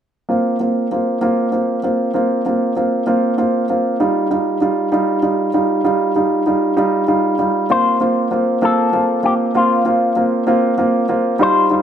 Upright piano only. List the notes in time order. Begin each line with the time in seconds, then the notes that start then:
0.29 A#3 C4 F4
0.60 A#3 C4 F4
0.92 A#3 C4 F4
1.21 A#3 C4 F4
1.52 A#3 C4 F4
1.83 A#3 C4 F4
2.14 A#3 C4 F4
2.46 A#3 C4 F4
2.76 A#3 C4 F4
3.07 A#3 C4 F4
3.38 A#3 C4 F4
3.70 A#3 C4 F4
4.00 G3 D#4 F4
4.30 G3 D#4 F4
4.61 G3 D#4 F4
4.92 G3 D#4 F4
5.22 G3 D#4 F4
5.54 G3 D#4 F4
5.84 G3 D#4 F4
6.16 G3 D#4 F4
6.46 G3 D#4 F4
6.77 G3 D#4 F4
7.08 G3 D#4 F4
7.39 G3 D#4 F4
7.70 A#3 C4 F4
8.00 A#3 C4 F4
8.31 A#3 C4 F4
8.62 A#3 C4 F4
8.93 A#3 C4 F4
9.23 A#3 C4 F4
9.55 A#3 C4 F4
9.85 A#3 C4 F4
10.16 A#3 C4 F4
10.47 A#3 C4 F4
10.78 A#3 C4 F4
11.09 A#3 C4 F4
11.39 G3 D#4 F4
11.70 G3 D#4 F4